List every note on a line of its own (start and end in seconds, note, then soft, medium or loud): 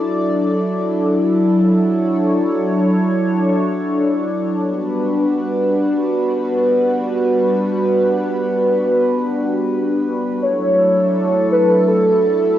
0.00 4.53 F#3 medium
0.00 10.38 D4 medium
0.00 4.53 E4 medium
0.00 4.53 A4 medium
0.00 1.61 D5 medium
1.64 4.54 C#5 medium
4.57 10.39 G3 medium
4.57 10.39 B3 medium
4.57 10.39 F#4 medium
4.57 10.39 B4 medium
10.42 12.59 F#3 medium
10.42 12.59 A3 medium
10.42 12.59 D4 medium
10.42 12.59 E4 medium
10.42 12.59 A4 medium
10.42 11.48 C#5 loud
11.52 11.89 B4 loud
11.88 12.59 A4 loud